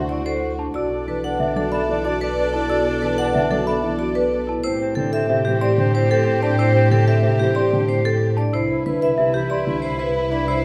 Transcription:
Already playing: double bass section D2, grand piano D3, string section F#4 C5
0.09 marimba E4, soprano saxophone F#4, vibraphone D5
0.25 soprano saxophone F#4, marimba A4, vibraphone C5
0.41 soprano saxophone F#4
0.59 marimba D4, celesta A5
0.74 double bass section B1, soprano saxophone D4, marimba F#4, string section A4 D5, vibraphone D5, celesta E6
0.91 soprano saxophone D4
1.07 grand piano E3, soprano saxophone D4, vibraphone B4
1.24 soprano saxophone D4, marimba B4, vibraphone F#5
1.40 grand piano D3, soprano saxophone D4, celesta E5
1.56 grand piano F#3, soprano saxophone D4, vibraphone A4
1.72 soprano saxophone D4, marimba A4, vibraphone E5, celesta B5
1.89 grand piano E3, soprano saxophone D4
2.04 soprano saxophone D4, marimba F#4, vibraphone D5
2.21 soprano saxophone D4, marimba B4, vibraphone B4
2.39 soprano saxophone D4
2.53 soprano saxophone D4, marimba E4, celesta A5
2.70 soprano saxophone D4, marimba F#4, vibraphone D5, celesta E6
2.88 soprano saxophone D4
3.02 grand piano E3, soprano saxophone D4, vibraphone B4
3.18 soprano saxophone D4, marimba B4, vibraphone F#5
3.35 grand piano D3, soprano saxophone D4, celesta E5
3.51 grand piano F#3, soprano saxophone D4, vibraphone A4
3.66 soprano saxophone D4, marimba A4, vibraphone E5, celesta B5
3.84 grand piano E3, soprano saxophone D4
3.99 soprano saxophone D4, marimba F#4, vibraphone D5
4.15 soprano saxophone D4, marimba B4, vibraphone B4
4.32 soprano saxophone D4
4.47 marimba E4, celesta A5
4.63 double bass section A2, soprano saxophone C4, marimba E4, string section G4 C5, vibraphone C5, celesta E6
4.80 soprano saxophone C4
4.95 grand piano D3, soprano saxophone C4, vibraphone A4
5.12 soprano saxophone C4, marimba A4, vibraphone E5
5.28 grand piano C3, soprano saxophone C4, celesta E5
5.45 grand piano E3, soprano saxophone C4, vibraphone G4
5.61 soprano saxophone C4, marimba G4, vibraphone D5, celesta C6
5.78 grand piano D3, soprano saxophone C4
5.94 soprano saxophone C4, marimba E4, vibraphone C5
6.10 soprano saxophone C4, marimba A4, vibraphone A4
6.26 soprano saxophone C4
6.42 soprano saxophone C4, marimba D4, vibraphone D5, celesta A5
6.58 soprano saxophone C4, marimba E4, vibraphone C5, celesta E6
6.75 soprano saxophone C4
6.91 grand piano D3, soprano saxophone C4, vibraphone A4
7.07 soprano saxophone C4, marimba A4, vibraphone E5
7.23 grand piano C3, soprano saxophone C4, celesta E5
7.40 grand piano E3, soprano saxophone C4, vibraphone G4
7.55 soprano saxophone C4, marimba G4, vibraphone D5, celesta C6
7.72 grand piano D3, soprano saxophone C4
7.88 soprano saxophone C4, marimba E4, vibraphone C5
8.05 soprano saxophone C4, marimba A4, vibraphone A4
8.21 soprano saxophone C4
8.37 marimba D4, vibraphone D5, celesta A5
8.53 double bass section C2, string section E4 B4, marimba E4, soprano saxophone E4, vibraphone C5, celesta E6
8.70 soprano saxophone E4
8.85 grand piano D3, soprano saxophone E4, vibraphone B4
9.01 soprano saxophone E4, marimba B4, vibraphone E5
9.18 grand piano C3, soprano saxophone E4, celesta E5
9.34 grand piano E3, soprano saxophone E4, vibraphone G4
9.50 soprano saxophone E4, marimba G4, vibraphone D5, celesta C6
9.67 grand piano D3, soprano saxophone E4
9.82 marimba E4, soprano saxophone E4, vibraphone C5
9.99 soprano saxophone E4, marimba B4, vibraphone B4
10.15 soprano saxophone E4
10.31 marimba D4, soprano saxophone E4, vibraphone D5, celesta B5
10.48 soprano saxophone E4, marimba E4, vibraphone C5, celesta E6

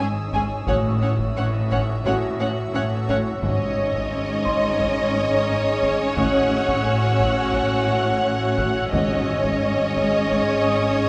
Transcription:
Already playing: ambient pad D#4 G#4 C#5, violin section D#6 E6
0.00 double bass section G#1, cello section G#2
0.33 cello section G#3, viola section C#4, violin section G#4 G#5, taiko
0.67 double bass section A1, cello section A2, french horn section C#4 F#4, viola section C#4, ambient pad F#4 E5, violin section C#5 F#5, taiko
1.02 cello section A2, viola section C#4, violin section C#5 F#5
1.19 taiko
1.36 double bass section A1, cello section A2, viola section C#4, violin section C#5 F#5
1.71 cello section A2, viola section C#4, violin section C#5 F#5, taiko
2.05 double bass section A1, cello section A2, french horn section C#4 F#4, viola section C#4, violin section C#5 F#5, taiko
2.40 cello section A2, viola section C#4, violin section C#5 F#5
2.73 double bass section A1, cello section A2, viola section C#4, violin section C#5 F#5
3.09 cello section A3, viola section C#4, violin section C#5 F#5, taiko
3.42 double bass section G#1, timpani G#2, cello section G#2, french horn section C#4 D#4, viola section C#4, ambient pad G#4 C#5 D#5, violin section C#5 D#5 C#6 D#6, taiko
3.78 cello section G#2
3.94 taiko
4.12 cello section G#2
4.45 cello section G#2, celesta C6, taiko
4.80 cello section G#2, taiko
5.14 cello section G#2
5.48 cello section G#2
5.83 cello section G#3, taiko
6.16 double bass section A1, cello section A2, french horn section F#4, ambient pad F#4 E5, violin section F#5, taiko
6.51 cello section A2
6.68 taiko
6.76 violin section E6
6.85 cello section A2
7.19 cello section A2, taiko
7.54 cello section A2, taiko
7.88 cello section A2
8.23 cello section A2
8.58 cello section A3, celesta F#5 F#6, taiko
8.91 double bass section G#1, cello section G#2, timpani G#2, french horn section C#4 G#4, viola section C#4, ambient pad G#4 C#5 D#5, violin section C#5 D#5 C#6 D#6, taiko
9.27 cello section G#2
9.44 taiko
9.62 cello section G#2
9.96 cello section G#2, taiko
10.31 cello section G#2, violin section G#6, taiko
10.66 cello section G#2, celesta D#6
11.03 cello section G#2

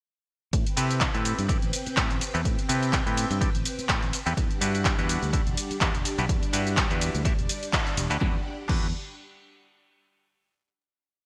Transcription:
0.53 fingered electric bass A2, string machine C4 B4 G5, kick, closed hi-hat, ride, shaker
0.67 closed hi-hat, shaker
0.77 fingered electric bass C3, clav C4 E4 G4 A4 B4, open hi-hat, ride, shaker
0.91 closed hi-hat, shaker
1.01 kick, clap, closed hi-hat, ride, shaker
1.14 fingered electric bass A2, clav C4 E4 G4 A4 B4, closed hi-hat, shaker
1.25 open hi-hat, ride, shaker
1.39 fingered electric bass G2, closed hi-hat, shaker
1.48 clav C4 E4 G4 A4 D5, kick, closed hi-hat, ride, shaker
1.62 fingered electric bass A1, closed hi-hat, shaker
1.73 open hi-hat, ride, shaker
1.86 muted fingered electric bass stroke, closed hi-hat, shaker
1.97 fingered electric bass A2, clav C4 E4 G4 A4 B4, kick, clap, closed hi-hat, ride, shaker
2.11 fingered electric bass A1, closed hi-hat, shaker
2.21 muted fingered electric bass stroke, open hi-hat, ride, shaker
2.34 fingered electric bass E2, clav C4 E4 G4 A4 B4, closed hi-hat, shaker
2.45 fingered electric bass A2, kick, closed hi-hat, ride, shaker
2.59 closed hi-hat, shaker
2.69 fingered electric bass C3, clav C4 E4 G4 A4 B4, open hi-hat, ride, shaker
2.83 closed hi-hat, shaker
2.93 kick, clap, closed hi-hat, ride, shaker
3.06 fingered electric bass A2, clav C4 E4 G4 A4 B4, closed hi-hat, shaker
3.17 open hi-hat, ride, shaker
3.31 fingered electric bass G2, closed hi-hat, shaker
3.41 clav C4 E4 G4 A4 D5, kick, closed hi-hat, ride, shaker
3.55 fingered electric bass A1, closed hi-hat, shaker
3.65 open hi-hat, ride, shaker
3.79 muted fingered electric bass stroke, closed hi-hat, shaker
3.89 fingered electric bass A2, clav C4 E4 G4 A4 B4, kick, clap, closed hi-hat, ride, shaker
4.03 fingered electric bass A1, closed hi-hat, shaker
4.13 muted fingered electric bass stroke, open hi-hat, ride, shaker
4.26 fingered electric bass E2, clav C4 E4 G4 A4 B4, closed hi-hat, shaker
4.37 fingered electric bass E2, string machine G3 D4 F#5, kick, closed hi-hat, ride, shaker
4.51 closed hi-hat, shaker
4.61 fingered electric bass G2, clav D4 E4 F#4 G4 B4, open hi-hat, ride, shaker
4.75 closed hi-hat, shaker
4.85 kick, clap, closed hi-hat, ride, shaker
4.98 fingered electric bass E2, clav D4 E4 F#4 G4 B4, closed hi-hat, shaker
5.09 open hi-hat, ride, shaker
5.23 fingered electric bass D2, closed hi-hat, shaker
5.33 clav D4 E4 F#4 G4 E5, kick, closed hi-hat, ride, shaker
5.47 fingered electric bass E1, closed hi-hat, shaker
5.57 open hi-hat, ride, shaker
5.71 muted fingered electric bass stroke, closed hi-hat, shaker
5.81 fingered electric bass E2, clav D4 E4 F#4 G4 B4, kick, clap, closed hi-hat, ride, shaker
5.95 fingered electric bass E1, closed hi-hat, shaker
6.05 muted fingered electric bass stroke, open hi-hat, ride, shaker
6.18 fingered electric bass B1, clav D4 E4 F#4 G4 B4, closed hi-hat, shaker
6.29 fingered electric bass E2, kick, closed hi-hat, ride, shaker
6.43 closed hi-hat, shaker
6.53 fingered electric bass G2, clav D4 E4 F#4 G4 B4, open hi-hat, ride, shaker
6.67 closed hi-hat, shaker
6.77 kick, clap, closed hi-hat, ride, shaker
6.90 fingered electric bass E2, clav D4 E4 F#4 G4 B4, closed hi-hat, shaker
7.01 open hi-hat, ride, shaker
7.15 fingered electric bass D2, closed hi-hat, shaker
7.25 clav D4 E4 F#4 G4 E5, kick, closed hi-hat, ride, shaker
7.39 fingered electric bass E1, closed hi-hat, shaker
7.49 open hi-hat, ride, shaker
7.63 closed hi-hat, shaker
7.73 clav D4 E4 F#4 G4 B4, kick, clap, closed hi-hat, ride, shaker
7.87 closed hi-hat, shaker
7.97 fingered electric bass E1, open hi-hat, ride, shaker
8.10 fingered electric bass D2, clav D4 E4 F#4 G4 B4, closed hi-hat, shaker
8.21 fingered electric bass E2, string machine D4 G4 F#5, clav F#4 G4 B4, kick, snare
8.68 fingered electric bass E2, clav D4 E4 F#4 G4 B4, kick, crash

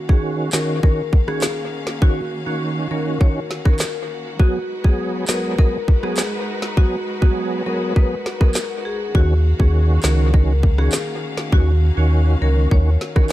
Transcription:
Already playing: string section D#3 A#3 C#4 F#4 F5
0.09 tonewheel organ D#3 C#4 F#4, marimba G#4, kick
0.53 tonewheel organ D#3 C#4 F#4, marimba A#4, snare, clap
0.83 tonewheel organ D#3 C#4 F#4, marimba A#4, kick
1.13 kick
1.27 tonewheel organ D#3 C#4 F#4, marimba G#4, cross-stick
1.42 snare, clap
1.87 snare
2.02 tonewheel organ D#3 C#4 F#4, marimba F#4, kick
2.46 tonewheel organ D#3 C#4 F#4, marimba F#4
2.91 tonewheel organ D#3 C#4 F#4, marimba A#4
3.20 tonewheel organ D#3 C#4 F#4, marimba C#5, kick
3.51 snare
3.65 tonewheel organ D#3 C#4 F#4, marimba A#4, kick, cross-stick
3.79 snare, clap
4.39 tonewheel organ F#3 B3 G#4, string section G#3 D#4 A#4 B4, marimba F#4, kick
4.84 tonewheel organ F#3 B3 G#4, marimba G#4, kick
5.28 tonewheel organ F#3 B3 G#4, marimba A#4, snare, clap
5.58 tonewheel organ F#3 B3 G#4, marimba A#4, kick
5.88 kick
6.03 tonewheel organ F#3 B3 G#4, marimba G#4, cross-stick
6.17 snare, clap
6.62 snare
6.77 tonewheel organ F#3 B3 G#4, marimba F#4, kick
7.22 tonewheel organ F#3 B3 G#4, marimba F#4, kick
7.66 tonewheel organ F#3 B3 G#4, marimba A#4
7.96 tonewheel organ F#3 B3 G#4, marimba B4, kick
8.26 snare
8.40 tonewheel organ F#3 B3 G#4, marimba A#4, kick, cross-stick
8.55 snare, clap
8.85 marimba G#4
9.15 sub bass D#2, tonewheel organ D#3 C#4 F#4, string section D#3 A#3 C#4 F5, marimba F#4, kick
9.59 sub bass D#2, tonewheel organ D#3 C#4 F#4, marimba G#4, kick
10.03 sub bass C#2, tonewheel organ D#3 C#4 F#4, marimba A#4, snare, clap
10.33 tonewheel organ D#3 C#4 F#4, marimba A#4, kick
10.63 kick
10.78 tonewheel organ D#3 C#4 F#4, marimba G#4, cross-stick
10.92 snare, clap
11.37 snare
11.52 sub bass D#2, tonewheel organ D#3 C#4 F#4, marimba F#4, kick
11.97 sub bass D#2, tonewheel organ D#3 C#4 F#4, marimba F#4
12.41 sub bass C#2, tonewheel organ D#3 C#4 F#4, marimba A#4
12.71 sub bass D#2, tonewheel organ D#3 C#4 F#4, marimba C#5, kick
13.01 snare
13.16 tonewheel organ D#3 C#4 F#4, marimba A#4, kick, cross-stick

